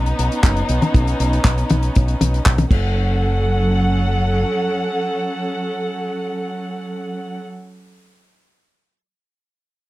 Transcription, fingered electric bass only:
0.00 0.12 B1 medium
0.19 0.28 B1 medium
0.43 0.62 F#1 medium
0.69 0.78 B1 medium
0.94 1.12 B1 medium
1.20 1.38 B1 medium
1.45 1.63 B1 medium
1.70 1.88 B1 medium
1.96 2.14 B1 medium
2.21 2.39 B1 medium
2.46 2.64 B1 medium
2.71 4.43 F#1 medium

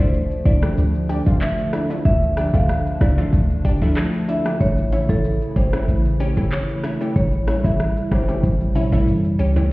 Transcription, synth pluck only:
0.00 0.11 F3 medium
0.00 0.11 A3 medium
0.00 0.11 D4 medium
0.00 0.11 E4 medium
0.45 0.52 D4 medium
0.45 0.52 E4 medium
0.62 0.74 F3 medium
0.62 0.74 A3 medium
0.62 0.75 D4 medium
0.62 0.75 G4 medium
1.09 1.16 D4 medium
1.09 1.16 G4 loud
1.26 1.38 F3 medium
1.26 1.38 A3 medium
1.26 1.38 D4 medium
1.26 1.38 F4 medium
1.73 1.80 D4 medium
1.73 1.80 E4 medium
1.90 2.02 F3 medium
1.90 2.02 A3 medium
1.90 2.02 D4 medium
1.90 2.02 E4 medium
2.37 2.44 D4 medium
2.37 2.44 G4 medium
2.54 2.66 F3 medium
2.54 2.66 A3 medium
2.54 2.66 D4 medium
2.54 2.66 G4 medium
3.01 3.08 D4 medium
3.01 3.08 E4 medium
3.18 3.30 F3 medium
3.18 3.30 A3 medium
3.18 3.30 D4 medium
3.18 3.30 F4 medium
3.65 3.71 D4 loud
3.65 3.72 G4 loud
3.82 3.94 F3 medium
3.82 3.94 A3 medium
3.82 3.94 D4 medium
3.82 3.94 E4 loud
4.28 4.35 D4 medium
4.28 4.35 E4 medium
4.45 4.57 F3 medium
4.45 4.58 A3 medium
4.45 4.58 D4 medium
4.45 4.58 G4 medium
4.92 4.99 C#4 medium
4.92 4.99 E4 medium
5.09 5.21 E3 medium
5.09 5.21 A3 medium
5.09 5.21 C#4 medium
5.09 5.21 E4 medium
5.56 5.63 C#4 medium
5.56 5.63 G4 medium
5.73 5.85 E3 medium
5.73 5.85 A3 medium
5.73 5.85 C#4 medium
5.73 5.85 E4 medium
6.20 6.27 C#4 medium
6.20 6.27 G4 loud
6.37 6.49 E3 medium
6.37 6.49 A3 medium
6.37 6.49 C#4 medium
6.37 6.49 G4 medium
6.84 6.91 C#4 medium
6.84 6.91 E4 medium
7.01 7.13 E3 medium
7.01 7.13 A3 medium
7.01 7.13 C#4 medium
7.01 7.13 G4 medium
7.48 7.54 C#4 medium
7.48 7.55 E4 medium
7.65 7.77 E3 medium
7.65 7.77 A3 medium
7.65 7.77 C#4 medium
7.65 7.77 E4 medium
8.12 8.18 C#4 medium
8.12 8.18 G4 medium
8.28 8.40 E3 medium
8.28 8.40 A3 medium
8.28 8.41 C#4 medium
8.28 8.41 G4 medium
8.75 8.82 C#4 loud
8.75 8.82 E4 loud
8.92 9.04 E3 medium
8.92 9.04 A3 medium
8.92 9.04 C#4 medium
8.92 9.04 E4 loud
9.39 9.46 C#4 medium
9.39 9.46 G4 medium
9.56 9.68 E3 medium
9.56 9.68 A3 medium
9.56 9.68 C#4 medium
9.56 9.68 G4 medium

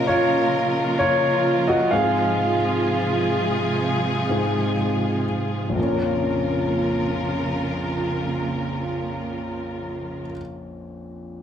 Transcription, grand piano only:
0.00 1.94 A#2 soft
0.00 1.93 F3 soft
0.00 1.94 C#4 medium
0.00 1.94 A#4 medium
0.00 1.68 D#5 medium
0.07 0.96 F4 medium
0.07 0.95 C#5 medium
0.99 1.65 F4 medium
0.99 1.64 C#5 medium
1.68 1.91 F#4 medium
1.68 1.90 D#5 medium
1.91 2.54 G#2 soft
1.91 2.54 G#3 soft
1.91 2.55 C4 soft
1.91 5.24 G#4 medium
1.91 5.23 F5 medium
4.29 4.74 G#2 soft
4.29 4.75 G#3 soft
4.29 4.75 C4 soft
5.69 10.22 A#1 soft
5.69 10.25 F2 soft
5.76 10.29 F3 soft
5.76 10.32 A#3 soft
5.83 10.36 C#4 soft
5.83 10.39 A#4 soft

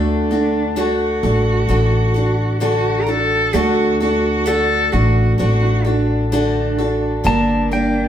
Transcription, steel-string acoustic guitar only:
0.00 0.32 D3 medium
0.00 0.32 A3 medium
0.00 0.31 D4 medium
0.00 0.31 F#4 medium
0.00 0.29 A4 medium
0.31 0.76 D4 medium
0.31 0.76 F#4 medium
0.31 0.76 A4 medium
0.76 1.23 D3 medium
0.76 1.23 A3 medium
0.76 1.24 D4 medium
0.76 1.23 F#4 medium
0.76 1.22 A4 medium
1.23 1.67 D4 soft
1.23 1.68 F#4 medium
1.23 1.69 A4 medium
1.69 2.16 A3 medium
1.69 2.15 D4 medium
1.69 2.15 F#4 medium
1.69 2.13 A4 medium
2.14 2.60 D4 medium
2.14 2.60 F#4 medium
2.14 2.61 A4 medium
2.60 3.08 D3 medium
2.60 3.08 A3 medium
2.60 3.07 D4 medium
2.60 3.07 F#4 medium
2.60 3.05 A4 medium
3.06 3.53 D4 soft
3.06 3.53 F#4 medium
3.06 3.54 A4 medium
3.53 4.00 D3 medium
3.53 4.01 A3 medium
3.53 4.01 D4 medium
3.53 4.00 F#4 medium
3.53 3.99 A4 medium
4.00 4.45 D4 medium
4.00 4.46 F#4 medium
4.00 4.46 A4 medium
4.46 4.93 D3 medium
4.46 4.93 A3 medium
4.46 4.92 D4 medium
4.46 4.92 F#4 medium
4.46 4.91 A4 medium
4.92 5.38 D4 soft
4.92 5.39 F#4 medium
4.92 5.39 A4 medium
5.38 5.85 A3 medium
5.38 5.85 D4 medium
5.38 5.85 F#4 medium
5.38 5.83 A4 medium
5.85 6.32 D4 soft
5.85 6.32 F#4 medium
5.85 6.31 A4 medium
6.32 6.78 D3 medium
6.32 6.78 A3 medium
6.32 6.79 D4 medium
6.32 6.78 F#4 medium
6.32 6.77 A4 medium
6.78 7.24 D4 medium
6.78 7.25 F#4 medium
6.78 7.25 A4 medium
7.24 7.70 G2 medium
7.24 7.71 D3 medium
7.24 7.71 G3 medium
7.24 7.71 A#3 medium
7.24 7.71 D4 medium
7.24 7.70 A#4 medium
7.71 8.08 G3 soft
7.71 8.08 A#3 soft
7.71 8.08 D4 soft
7.71 8.08 A#4 medium

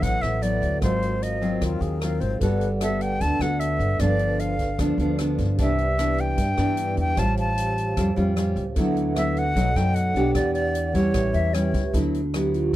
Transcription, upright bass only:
0.02 0.21 A1 medium
0.23 0.60 A1 medium
0.62 0.80 D2 medium
0.81 1.57 G#1 medium
1.61 1.80 D#2 medium
1.81 2.18 D#2 medium
2.21 2.40 G#1 medium
2.41 3.16 G1 medium
3.21 3.39 D2 medium
3.39 3.77 D2 medium
3.79 3.98 G1 medium
3.99 4.75 G1 medium
4.79 4.97 D2 medium
4.98 5.35 D2 medium
5.39 5.57 G1 medium
5.59 6.34 C2 medium
6.38 6.56 G2 medium
6.58 6.95 G2 medium
6.97 7.16 E2 medium
7.17 7.93 A1 medium
7.97 8.15 F2 medium
8.17 8.54 F2 medium
8.56 8.75 C#2 medium
8.76 9.51 D2 medium
9.56 9.74 B1 medium
9.75 10.12 F#2 medium
10.14 10.33 B1 medium
10.35 11.10 E2 medium
11.14 11.32 A1 medium
11.34 11.71 E2 medium
11.74 11.92 C#2 medium
11.94 12.69 D2 medium

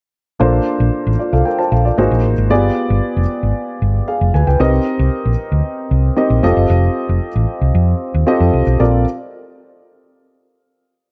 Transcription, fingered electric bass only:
0.41 0.59 A#1 medium
0.80 0.89 A#1 medium
1.07 1.15 A1 medium
1.33 1.42 C2 medium
1.72 1.90 A#1 medium
1.98 2.07 G#1 medium
2.11 2.25 A#1 medium
2.25 2.34 A1 medium
2.38 2.51 G#1 medium
2.51 2.69 G1 loud
2.90 2.99 G1 medium
3.17 3.25 F1 medium
3.43 3.52 G#1 medium
3.82 4.00 G1 medium
4.21 4.30 F1 medium
4.34 4.43 D2 medium
4.47 4.56 C#2 medium
4.60 4.78 C2 medium
4.99 5.08 C2 medium
5.25 5.34 A#1 medium
5.52 5.61 D2 medium
5.91 6.09 C2 medium
6.30 6.39 A#1 medium
6.43 6.52 F1 medium
6.57 6.66 F#1 medium
6.70 6.88 F1 loud
7.09 7.18 F1 medium
7.35 7.44 A1 medium
7.61 7.70 C2 medium
7.75 7.93 F2 medium
8.14 8.23 D#2 medium
8.40 8.49 F2 medium
8.53 8.63 C2 medium
8.67 8.76 B1 medium
8.80 9.04 A#1 medium

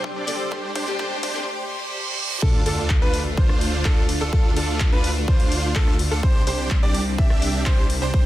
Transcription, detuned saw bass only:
0.00 0.14 C2 loud
0.16 0.49 C2 medium
0.52 0.73 C2 medium
0.76 0.97 C2 loud
0.99 1.21 C2 medium
1.23 1.45 C2 loud
2.42 2.64 D2 loud
2.66 2.99 D2 loud
3.02 3.35 D2 loud
3.38 3.83 D2 medium
3.85 4.18 D2 loud
4.21 4.30 D2 loud
4.33 4.54 D2 loud
4.57 4.90 D2 loud
4.92 5.26 D2 loud
5.28 5.73 D2 medium
5.76 6.09 D2 loud
6.11 6.21 D2 loud
6.23 6.45 C2 loud
6.47 6.80 C2 loud
6.83 7.16 C2 loud
7.18 7.64 C2 loud
7.66 7.99 C2 loud
8.02 8.11 C2 loud
8.14 8.26 C2 loud

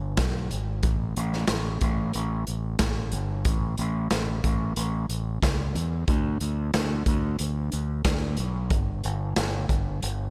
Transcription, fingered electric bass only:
0.00 0.16 G1 medium
0.18 0.49 B1 medium
0.52 0.82 G#1 medium
0.84 1.14 A1 medium
1.17 1.48 A1 loud
1.48 1.80 A1 medium
1.82 2.13 A1 loud
2.15 2.46 A1 medium
2.48 2.79 A1 medium
2.80 3.11 A1 medium
3.13 3.44 G1 loud
3.45 3.76 A1 loud
3.79 4.10 A1 loud
4.11 4.42 A1 medium
4.45 4.75 A1 medium
4.77 5.08 A1 medium
5.09 5.40 A1 medium
5.43 5.74 C#2 medium
5.75 6.06 E2 medium
6.08 6.39 D2 loud
6.41 6.72 D2 medium
6.74 7.05 D2 medium
7.06 7.37 D2 medium
7.40 7.71 D2 medium
7.73 8.04 D2 medium
8.05 8.36 D2 medium
8.39 8.69 B1 medium
8.71 9.02 G1 medium
9.05 9.35 G1 loud
9.37 9.68 G1 loud
9.70 10.00 G1 medium
10.03 10.30 G1 medium

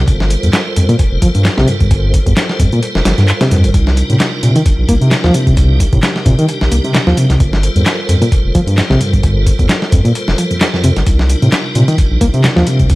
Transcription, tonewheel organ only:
0.00 7.36 A#4 medium
0.07 11.03 G3 medium
0.07 3.70 F4 medium
0.07 3.70 A4 medium
0.07 3.70 C5 medium
3.74 7.37 C3 medium
3.74 7.37 D4 medium
3.74 7.37 D#4 medium
3.74 5.55 F4 medium
5.58 7.39 G4 medium
7.40 11.03 F4 medium
7.40 11.03 A4 medium
7.40 12.95 A#4 medium
7.40 11.03 C5 medium
11.07 12.95 C3 medium
11.07 12.95 G3 medium
11.07 12.95 D4 medium
11.07 12.95 D#4 medium
11.07 12.95 F4 medium

